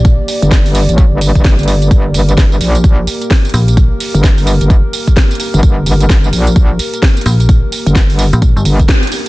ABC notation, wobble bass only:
X:1
M:4/4
L:1/16
Q:"Swing 16ths" 1/4=129
K:Gm
V:1 name="Wobble bass" clef=bass
z3 G,,,4 A,,,2 G,,,2 G,,,2 G,,,3 | G,,,2 G,,,4 B,,,4 z6 | z3 G,,,4 G,,,2 z6 G,,, | G,,,2 G,,,4 B,,,4 z6 |
z3 G,,,4 z3 G,,,2 z4 |]